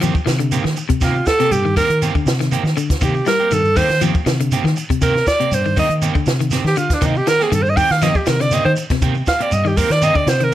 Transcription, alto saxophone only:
1.04 F4
1.27 A4
1.52 G4
1.77 A#4
3.04 G4
3.27 A#4
3.53 A4
3.76 C5
5.03 A#4
5.27 D5
5.54 C5
5.79 D#5
6.67 G4
6.78 F4
6.93 D4
7.06 D#4
7.17 G4
7.28 A#4
7.43 G#4
7.54 A4
7.62 C5
7.69 D#5
7.77 G5
7.91 F5
8.03 D#5
8.16 G4
8.28 A#4
8.41 D5
8.53 D#5
8.65 C5
9.28 F5
9.42 D5
9.53 D#5
9.67 G4
9.77 A#4
9.92 D5
10.03 D#5
10.16 D5
10.29 C5
10.44 A#4

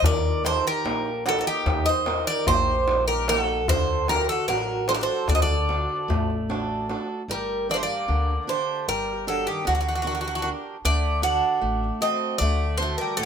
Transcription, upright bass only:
0.02 D#2
0.84 A#1
1.66 D#2
2.48 A#1
3.69 D2
4.48 A1
5.28 D2
6.08 A1
7.28 G1
8.09 D2
8.88 G1
9.67 D2
10.85 D2
11.62 A1
12.41 D2
13.18 A1

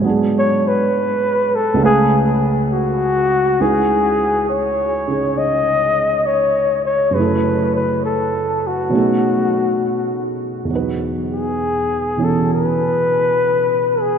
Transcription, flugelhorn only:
0.38 C#5
0.68 B4
1.55 A4
1.85 G#4
2.73 F#4
3.61 G#4
4.49 C#5
5.38 D#5
6.26 C#5
6.85 C#5
7.14 B4
7.76 B4
8.05 A4
8.67 F#4
11.33 G#4
12.23 A4
12.54 B4
14.01 G#4

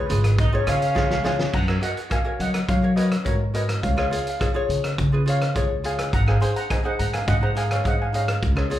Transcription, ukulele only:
0.09 F4 G#4 B4
0.53 F4 G#4 C#5
0.67 F4 G#4 C#5
0.95 F4 G#4 C#5
1.24 F4 G#4 C#5
1.68 F#4 A#4 C#5
1.81 F#4 A#4 D#5
2.10 F#4 A#4 C#5
2.25 F#4 A#4 C#5
2.82 F#4 A#4 C#5
2.97 F#4 A#4 C#5
3.25 F#4 A#4 C#5
3.54 F#4 A#4 C#5
3.97 F4 G#4 C#5
4.11 F4 G#4 C#5
4.39 F4 G#4 C#5
4.54 F4 G#4 C#5
5.12 F4 G#4 B4
5.26 F4 G#4 C#5
5.55 F4 G#4 C#5
5.84 F4 G#4 C#5
6.26 D#4 G#4 C5
6.40 D#4 G#4 C5
6.70 D#4 G#4 C5
6.84 D#4 G#4 C5
7.41 D#4 G#4 C5
7.55 D#4 G#4 A#4
7.84 D#4 G#4 C5
8.13 D#4 G#4 D#5
8.56 F4 G#4 C#5
8.70 F4 G#4 C#5

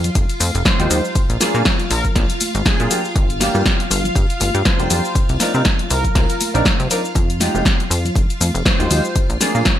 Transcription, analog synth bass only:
Already playing: F2
0.15 F1
0.40 F2
0.55 F1
0.80 D#2
0.90 D#2
1.15 A#1
1.29 A#1
1.54 A#2
1.91 A#1
2.16 A#1
2.55 G#1
2.80 A#2
3.16 G1
3.55 G2
3.91 G1
4.16 G2
4.41 G1
4.55 G2
4.80 F1
4.90 F2
5.15 C2
5.29 C2
5.54 C3
5.90 C2
6.15 C2
6.54 A#1
6.80 C3
7.15 F2
7.55 F1
7.90 F2
8.15 F1
8.41 F2
8.55 F1
8.80 D#2
8.91 D#2
9.16 A#1
9.30 A#1
9.55 A#2

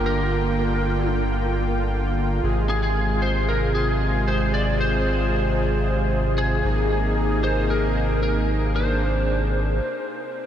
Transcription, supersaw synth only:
Already playing: D3 A#3 F4 G5
2.43 C3 G#3 G#4
6.64 A#3 D#4 G#4
8.75 D4

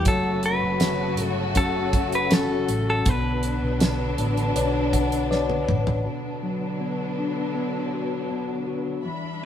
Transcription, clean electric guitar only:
0.08 A4
0.46 B4
1.25 A4
1.57 A4
2.15 B4
2.33 A4
2.90 A4
3.09 B4

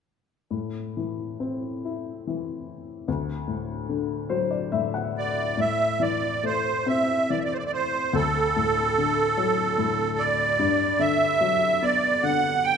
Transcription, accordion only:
5.18 D5
5.60 E5
6.02 D5
6.45 C5
6.87 E5
7.30 D5
7.40 E5
7.45 D5
7.54 C5
7.59 D5
7.65 D5
7.73 C5
8.15 A4
10.18 D5
11.00 E5
11.82 D5
12.23 F#5
12.64 G5

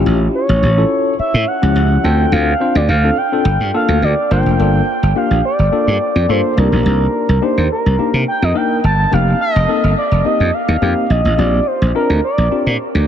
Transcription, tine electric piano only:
Already playing: C#4 E4 F4 G4
0.62 F4 G4
0.77 C#4 E4 F4 A4
1.62 F3 C#4 E4 G4
2.04 C4 D4 F4 A4
2.60 C4 D4 F4 C5
3.04 C4 D4 F4 A4
3.32 C4 D4 F4 A4
3.74 A#3 D4 F4 A4
4.31 A#3 D4 F4 C5
4.59 A#3 D4 F4 A4
5.16 A#3 D4 F4 G4
5.72 A#3 D4 F4 A4
6.29 A#3 D4 F4 A4
6.57 A#3 D4 D#4 F4
6.64 G4
7.42 A#3 D4 D#4 G4
7.99 A#3 D4 D#4 G4
8.54 A#3 D4 D#4 A#4
9.12 A#3 C4 D#4 G4
9.68 A#3 C4 D#4 A4
10.25 A#3 C4 D#4 G4
10.82 A#3 C4 D#4 G4
11.38 C4 D4 F4 G4
11.95 C4 D4 F4 A#4
12.51 C4 D4 F4 G4

